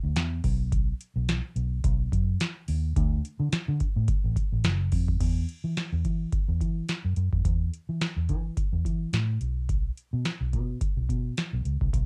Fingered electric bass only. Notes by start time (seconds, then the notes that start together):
0.03 D2
0.16 E2
0.44 B1
1.16 B1
1.56 B1
1.84 B1
2.12 F#2
2.68 D#2
2.96 D2
3.40 D3
3.52 muted fingered electric bass stroke
3.68 D3
3.96 A2
4.24 A1
4.52 A1
4.64 F#1
4.92 F2
5.20 E2
5.64 E3
5.92 E2
6.05 E3
6.48 E2
6.61 E3
7.05 F#2
7.17 F#2
7.33 F2
7.45 E2
7.89 E3
8.16 E2
8.30 E3
8.73 E2
8.85 E3
9.13 A2
9.41 B1
10.13 B2
10.41 B1
10.53 B2
10.97 B1
11.09 B2
11.53 B1
11.65 C#2
11.81 C2
11.93 B1